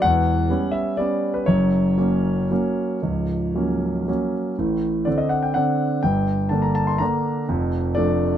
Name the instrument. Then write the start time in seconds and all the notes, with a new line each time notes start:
grand piano
0.02 E1 E2 F#5
0.50 G3 B3 C#4
0.72 E5
0.97 G3 B3 C#4 D5
1.34 B4
1.46 F#1 F#2 C#5
1.98 F#3 A#3 C#4
2.51 F#3 A#3 C#4
3.02 C#1 C#2
3.55 F#3 A#3 C#4
4.08 F#3 A#3 C#4
4.58 A1 A2
5.05 D3 C4 D4 D5
5.18 D#5
5.29 F#5
5.43 G5
5.54 D3 C4 D4 F#5
6.03 G1 G2 G5
6.49 D3 A#3 D4 A5
6.62 A#5
6.75 A5
6.87 C6
6.98 D3 A#3 D4 A#5
7.49 F1 F2
7.95 F3 A3 D4 D5